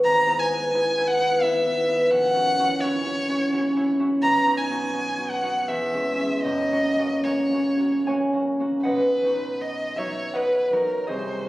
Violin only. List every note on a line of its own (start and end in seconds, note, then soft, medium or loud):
0.05 0.41 A#5 loud
0.39 1.09 G#5 medium
1.08 1.44 F#5 loud
1.43 2.12 E5 medium
2.11 2.82 F#5 loud
2.81 3.87 C#5 medium
4.23 4.59 A#5 loud
4.57 5.32 G#5 medium
5.30 5.70 F#5 medium
5.69 6.43 E5 medium
6.43 7.25 D#5 medium
7.24 8.08 C#5 medium
8.85 9.63 B4 medium
9.61 10.00 D#5 medium
9.98 10.38 C#5 medium
10.36 10.75 B4 medium
10.73 11.10 A#4 medium
11.10 11.49 C5 medium